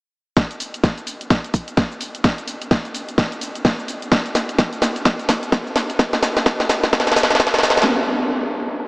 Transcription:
0.37 kick loud
0.37 snare soft
0.37 closed hi-hat medium
0.37 cabasa soft
0.51 closed hi-hat soft
0.51 cabasa soft
0.60 open hi-hat loud
0.60 cabasa medium
0.74 closed hi-hat medium
0.74 cabasa soft
0.84 kick loud
0.84 snare soft
0.84 closed hi-hat medium
0.84 cabasa soft
0.98 closed hi-hat soft
0.98 cabasa soft
1.07 open hi-hat medium
1.07 cabasa medium
1.21 closed hi-hat medium
1.21 cabasa soft
1.30 kick loud
1.30 snare soft
1.30 closed hi-hat medium
1.30 cabasa soft
1.44 closed hi-hat soft
1.44 cabasa soft
1.54 kick medium
1.54 open hi-hat loud
1.54 cabasa medium
1.68 closed hi-hat soft
1.68 cabasa soft
1.77 kick loud
1.77 snare soft
1.77 closed hi-hat medium
1.77 cabasa soft
1.92 cabasa soft
2.01 open hi-hat medium
2.01 cabasa medium
2.15 closed hi-hat medium
2.15 cabasa soft
2.24 kick loud
2.24 snare medium
2.24 closed hi-hat medium
2.24 cabasa soft
2.38 closed hi-hat soft
2.38 cabasa soft
2.48 open hi-hat loud
2.48 cabasa medium
2.62 closed hi-hat medium
2.62 cabasa soft
2.71 kick loud
2.71 snare medium
2.71 closed hi-hat medium
2.71 cabasa soft
2.85 closed hi-hat soft
2.85 cabasa soft
2.94 open hi-hat loud
2.94 cabasa medium
3.09 closed hi-hat soft
3.09 cabasa soft
3.18 kick loud
3.18 snare medium
3.18 closed hi-hat medium
3.18 cabasa soft
3.32 closed hi-hat soft
3.32 cabasa soft
3.41 open hi-hat loud
3.41 cabasa medium
3.55 closed hi-hat soft
3.55 cabasa soft
3.65 kick loud
3.65 snare medium
3.65 closed hi-hat medium
3.65 cabasa soft
3.79 cabasa soft
3.88 open hi-hat medium
3.88 cabasa medium
4.02 closed hi-hat soft
4.02 cabasa soft
4.12 kick loud
4.12 snare medium
4.12 closed hi-hat medium
4.12 cabasa soft
4.26 closed hi-hat soft
4.26 cabasa soft
4.35 snare medium
4.35 open hi-hat loud
4.35 cabasa medium
4.49 closed hi-hat medium
4.49 cabasa soft
4.59 kick loud
4.59 snare medium
4.59 closed hi-hat medium
4.59 cabasa soft
4.73 closed hi-hat soft
4.73 cabasa soft
4.82 snare medium
4.82 open hi-hat loud
4.82 cabasa medium
4.96 closed hi-hat soft
4.96 cabasa soft
5.05 kick loud
5.05 snare medium
5.05 closed hi-hat medium
5.05 cabasa soft
5.19 closed hi-hat soft
5.19 cabasa soft
5.29 kick medium
5.29 snare medium
5.29 open hi-hat loud
5.29 cabasa medium
5.43 closed hi-hat soft
5.43 cabasa soft
5.52 kick loud
5.52 snare medium
5.52 closed hi-hat medium
5.52 cabasa soft
5.67 cabasa soft
5.76 snare medium
5.76 open hi-hat medium
5.76 cabasa medium
5.90 closed hi-hat soft
5.90 cabasa soft
5.99 kick loud
5.99 snare medium
5.99 closed hi-hat medium
5.99 cabasa soft
6.13 snare medium
6.13 closed hi-hat soft
6.13 cabasa soft
6.23 snare loud
6.23 open hi-hat loud
6.23 cabasa medium
6.37 snare medium
6.37 closed hi-hat medium
6.37 cabasa soft
6.46 kick loud
6.46 snare loud
6.46 closed hi-hat medium
6.46 cabasa soft
6.60 snare medium
6.60 closed hi-hat soft
6.60 cabasa soft
6.69 snare loud
6.69 open hi-hat loud
6.69 cabasa medium
6.83 kick medium
6.83 snare medium
6.83 closed hi-hat soft
6.83 cabasa soft
6.93 kick loud
6.93 snare loud
6.93 closed hi-hat medium
6.93 cabasa soft
7.00 snare medium
7.07 snare medium
7.07 closed hi-hat soft
7.07 cabasa soft
7.12 snare medium
7.16 snare loud
7.16 open hi-hat loud
7.16 cabasa medium
7.23 snare loud
7.30 snare medium
7.30 closed hi-hat soft
7.30 cabasa soft
7.35 snare loud
7.40 kick loud
7.40 snare loud
7.40 closed hi-hat medium
7.40 cabasa soft
7.47 snare medium
7.54 snare loud
7.54 cabasa soft
7.59 snare medium
7.63 snare loud
7.63 open hi-hat loud
7.63 cabasa medium
7.70 snare loud
7.77 snare medium
7.77 closed hi-hat medium
7.77 cabasa soft
7.82 snare medium

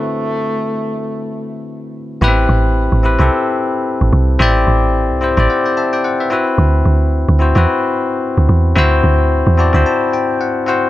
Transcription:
0.00 1.90 D3 medium
0.00 1.64 A3 medium
0.00 1.90 A3 medium
0.00 1.91 C4 medium
0.00 1.91 E4 medium
0.00 1.92 F#4 medium
0.00 1.92 B4 medium
2.21 2.47 A1 loud
2.21 2.29 B3 loud
2.21 2.89 E4 loud
2.21 2.90 G4 loud
2.21 2.90 B4 loud
2.28 2.92 C4 loud
2.49 2.89 A1 loud
2.92 3.18 A1 medium
3.03 3.16 C4 medium
3.03 3.16 E4 medium
3.03 3.17 G4 medium
3.03 3.17 B4 medium
3.19 3.30 C2 loud
3.19 4.06 C4 medium
3.19 4.06 E4 medium
3.19 4.06 G4 medium
3.19 4.07 A4 loud
4.01 4.12 A1 medium
4.13 4.38 C2 loud
4.39 4.65 A1 loud
4.39 5.07 C4 loud
4.39 5.07 E4 loud
4.39 5.08 G4 loud
4.39 5.08 D5 loud
4.67 5.12 A1 medium
5.10 5.36 C2 medium
5.21 5.34 C4 medium
5.21 5.35 E4 medium
5.21 5.35 G4 medium
5.21 5.36 C5 loud
5.37 5.48 A1 loud
5.37 6.13 C4 medium
5.37 6.13 E4 medium
5.37 6.14 G4 medium
5.37 5.50 D5 loud
5.50 5.65 C5 medium
5.50 5.65 F#5 medium
5.66 5.76 D5 medium
5.66 5.76 G5 medium
5.77 5.92 E5 medium
5.77 5.92 A5 medium
5.93 6.04 D5 medium
5.93 6.03 G5 medium
6.04 6.19 C5 medium
6.04 6.19 F#5 medium
6.20 6.32 B4 medium
6.20 6.46 E5 medium
6.30 7.19 C4 loud
6.30 7.19 E4 medium
6.30 7.20 F#4 medium
6.30 7.20 B4 loud
6.58 6.84 D2 loud
6.85 7.26 D2 medium
7.29 7.54 D2 loud
7.39 7.52 C4 medium
7.39 7.53 E4 medium
7.39 7.53 F#4 medium
7.39 7.54 C5 medium
7.55 7.66 E2 loud
7.55 8.42 C4 medium
7.55 8.42 E4 medium
7.55 8.43 F#4 medium
7.55 8.43 B4 loud
8.38 8.48 D2 medium
8.49 8.74 E2 loud
8.76 9.02 D2 loud
8.76 9.43 C4 loud
8.76 9.44 E4 loud
8.76 9.44 F#4 loud
8.76 9.45 C5 loud
9.04 9.44 D2 loud
9.47 9.72 E2 medium
9.57 9.70 C4 medium
9.57 9.71 E4 medium
9.57 9.71 F#4 medium
9.57 9.72 D5 medium
9.57 9.73 A5 medium
9.73 9.85 D2 loud
9.73 10.49 C4 medium
9.73 10.50 E4 medium
9.73 10.50 F#4 medium
9.73 10.51 C5 loud
9.73 9.85 B5 medium
9.86 10.11 A5 medium
10.13 10.38 G5 medium
10.41 10.66 F#5 medium
10.66 10.90 C4 medium
10.66 10.90 E4 medium
10.66 10.90 F#4 medium
10.66 10.90 C5 medium
10.66 10.90 F#5 medium

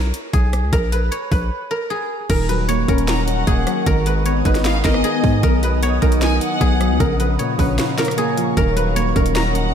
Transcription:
0.00 0.12 B1 loud
0.00 0.33 G#4 medium
0.00 0.72 A#4 medium
0.00 1.11 C#5 loud
0.14 closed hi-hat medium
0.33 0.65 B1 loud
0.33 1.90 G#4 medium
0.33 kick loud
0.33 closed hi-hat medium
0.53 cross-stick loud
0.53 closed hi-hat medium
0.63 0.72 C#2 loud
0.73 1.10 A#1 loud
0.73 0.98 A#4 loud
0.73 kick loud
0.73 closed hi-hat medium
0.92 1.31 B4 medium
0.92 closed hi-hat medium
1.12 2.68 C#5 medium
1.12 closed hi-hat loud
1.32 1.50 A#1 loud
1.32 1.77 B4 medium
1.32 kick loud
1.32 open hi-hat medium
1.71 2.29 A#4 medium
1.90 3.47 G#4 medium
2.29 2.86 D#1 loud
2.29 3.28 D#3 medium
2.29 3.85 A#4 medium
2.29 2.55 A#4 loud
2.29 6.96 D#5 medium
2.29 3.85 F#5 medium
2.29 3.85 C#6 medium
2.29 kick loud
2.29 closed hi-hat medium
2.29 crash loud
2.49 3.47 F#3 medium
2.49 2.95 B4 medium
2.49 closed hi-hat medium
2.68 3.47 A#3 medium
2.68 4.25 C#5 loud
2.68 closed hi-hat loud
2.88 3.45 D#1 loud
2.88 3.26 C#4 loud
2.88 3.86 A#4 medium
2.88 kick loud
2.88 closed hi-hat medium
2.98 closed hi-hat medium
3.08 3.27 A#5 medium
3.08 finger snap loud
3.08 snare loud
3.08 closed hi-hat medium
3.27 3.86 C#4 medium
3.27 3.83 F#5 medium
3.27 closed hi-hat medium
3.47 3.66 D#1 loud
3.47 3.87 A#3 loud
3.47 5.04 G#4 medium
3.47 kick loud
3.47 closed hi-hat medium
3.67 3.87 F#3 medium
3.67 cross-stick loud
3.67 closed hi-hat medium
3.86 4.43 G#1 loud
3.86 4.85 D#3 medium
3.86 6.97 B3 medium
3.86 4.13 A#4 loud
3.86 5.42 G#5 medium
3.86 5.42 D#6 medium
3.86 kick loud
3.86 closed hi-hat medium
4.06 5.04 G#3 medium
4.06 4.45 B4 medium
4.06 closed hi-hat medium
4.25 5.03 B3 medium
4.25 5.82 C#5 medium
4.25 closed hi-hat loud
4.45 4.83 G#1 loud
4.45 4.83 D#4 loud
4.45 4.91 B4 medium
4.45 kick loud
4.45 closed hi-hat medium
4.55 snare medium
4.55 closed hi-hat medium
4.65 4.84 F5 medium
4.65 finger snap loud
4.65 snare loud
4.65 closed hi-hat medium
4.84 5.03 G#1 loud
4.84 5.43 D#4 medium
4.84 5.43 A#4 medium
4.84 5.40 D#5 medium
4.84 finger snap medium
4.84 kick loud
4.84 snare loud
4.84 closed hi-hat medium
4.94 cross-stick loud
5.04 5.43 B3 medium
5.04 6.60 G#4 medium
5.04 closed hi-hat medium
5.24 5.43 G#2 loud
5.24 5.43 G#3 medium
5.24 kick loud
5.24 open hi-hat medium
5.43 6.00 B1 loud
5.43 6.41 D#3 medium
5.43 5.70 A#4 loud
5.43 6.99 F#5 medium
5.43 6.99 D#6 medium
5.43 kick loud
5.43 closed hi-hat medium
5.62 6.61 F#3 medium
5.62 6.08 B4 medium
5.62 closed hi-hat medium
5.83 6.60 B3 medium
5.83 7.39 C#5 loud
5.83 closed hi-hat loud
6.02 6.40 B1 loud
6.02 6.40 D#4 loud
6.02 7.00 A#4 medium
6.02 kick loud
6.02 closed hi-hat medium
6.12 closed hi-hat medium
6.22 6.40 G#5 medium
6.22 finger snap loud
6.22 snare loud
6.22 closed hi-hat medium
6.41 7.00 D#4 medium
6.41 6.97 F#5 medium
6.41 closed hi-hat medium
6.61 6.92 B1 loud
6.61 7.00 B3 loud
6.61 8.17 G#4 medium
6.61 kick loud
6.61 closed hi-hat medium
6.80 7.00 F#3 medium
6.80 cross-stick loud
6.80 closed hi-hat medium
6.90 7.00 C#2 loud
7.00 7.38 A#1 loud
7.00 7.98 C#3 loud
7.00 7.26 A#4 loud
7.00 8.55 C#5 medium
7.00 8.55 F5 medium
7.00 8.55 A#5 medium
7.00 9.74 C#6 medium
7.00 kick loud
7.00 closed hi-hat medium
7.20 8.18 F3 medium
7.20 7.59 B4 medium
7.20 closed hi-hat medium
7.39 8.38 A#2 medium
7.39 8.96 C#5 medium
7.39 closed hi-hat loud
7.59 7.79 A#1 loud
7.59 7.97 C#4 loud
7.59 8.04 B4 medium
7.59 kick loud
7.59 open hi-hat medium
7.79 finger snap medium
7.79 snare loud
7.79 closed hi-hat medium
7.98 8.57 C#4 medium
7.98 8.57 A#4 medium
7.98 finger snap medium
7.98 snare loud
7.98 closed hi-hat medium
8.05 cross-stick loud
8.05 closed hi-hat medium
8.11 closed hi-hat medium
8.17 8.57 A#3 loud
8.17 9.74 G#4 medium
8.17 closed hi-hat medium
8.37 8.57 F3 medium
8.37 closed hi-hat medium
8.57 9.13 D#1 loud
8.57 9.55 D#3 medium
8.57 9.74 A#4 medium
8.57 8.83 A#4 loud
8.57 9.74 D#5 medium
8.57 9.74 F#5 medium
8.57 kick loud
8.57 closed hi-hat medium
8.76 9.74 F#3 medium
8.76 9.22 B4 medium
8.76 closed hi-hat medium
8.96 9.74 A#3 medium
8.96 9.74 C#5 loud
8.96 closed hi-hat loud
9.16 9.72 D#1 loud
9.16 9.54 C#4 loud
9.16 9.74 A#4 medium
9.16 kick loud
9.16 closed hi-hat medium
9.26 closed hi-hat medium
9.36 9.54 A#5 medium
9.36 finger snap medium
9.36 snare loud
9.36 closed hi-hat medium
9.55 9.74 C#4 medium
9.55 9.74 F#5 medium
9.55 closed hi-hat medium

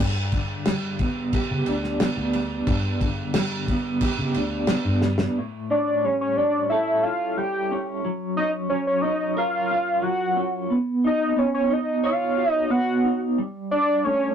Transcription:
0.00 0.53 G2 medium
0.00 1.68 G2 medium
0.32 2.01 D3 medium
0.32 kick medium
0.32 crash medium
0.65 2.33 G3 medium
0.65 0.94 G3 loud
0.65 snare loud
0.65 crash medium
0.99 2.01 B3 medium
0.99 kick medium
0.99 crash medium
1.33 3.02 G4 medium
1.33 kick medium
1.33 crash medium
1.51 1.64 C#3 medium
1.66 1.94 D2 medium
1.66 3.36 D4 medium
1.66 crash medium
1.84 snare soft
2.00 3.69 B3 medium
2.00 snare loud
2.00 crash medium
2.17 2.58 D2 loud
2.33 3.34 G3 medium
2.33 crash medium
2.67 3.21 G2 medium
2.67 4.36 G2 medium
2.67 kick loud
2.67 crash medium
3.01 4.70 D3 medium
3.01 kick medium
3.01 crash medium
3.34 3.61 G3 loud
3.34 5.03 G3 medium
3.34 snare loud
3.34 crash loud
3.68 4.70 B3 medium
3.68 kick medium
3.68 crash medium
4.01 5.37 G4 medium
4.01 kick medium
4.01 crash medium
4.18 4.32 C#3 medium
4.34 4.63 D2 medium
4.34 5.37 D4 medium
4.34 crash medium
4.67 5.37 B3 medium
4.67 snare loud
4.67 crash medium
4.85 5.26 G2 medium
5.02 5.37 G3 medium
5.02 snare medium
5.18 snare loud
5.38 7.04 A2 medium
5.70 6.38 C#4 medium
5.70 6.06 D5 medium
6.04 7.36 G3 medium
6.04 6.21 C#5 medium
6.21 6.38 C#5 medium
6.36 7.71 C#4 medium
6.36 6.69 D5 medium
6.70 8.04 A4 medium
6.70 7.04 E5 medium
7.03 8.04 E4 medium
7.03 7.39 F5 loud
7.37 8.04 G3 medium
7.37 7.87 G5 loud
7.71 8.38 C#4 medium
8.05 8.69 F#3 medium
8.37 9.03 C#4 medium
8.37 8.51 D#5 loud
8.70 10.01 F#3 medium
8.70 8.85 C#5 medium
8.87 9.03 C#5 medium
9.01 10.35 C#4 medium
9.01 9.36 D#5 medium
9.37 10.71 A#4 medium
9.37 10.04 F5 loud
9.71 10.71 F4 medium
10.02 10.70 F#3 medium
10.02 10.54 F#5 loud
10.36 10.70 C#4 medium
10.70 11.35 B3 medium
11.04 11.69 D#4 medium
11.04 11.40 D#5 medium
11.36 12.69 B3 medium
11.36 11.54 C#5 medium
11.54 11.74 C#5 medium
11.70 13.03 D#4 medium
11.70 12.05 D#5 medium
12.04 13.37 C#5 medium
12.04 12.52 F5 loud
12.37 13.38 F#4 medium
12.52 12.72 D#5 loud
12.70 13.37 B3 medium
12.70 13.21 F#5 loud
13.04 13.38 D#4 medium
13.38 14.35 G3 medium
13.71 14.35 D4 medium
13.71 14.06 D5 loud
14.04 14.35 A3 medium
14.04 14.35 C#5 loud

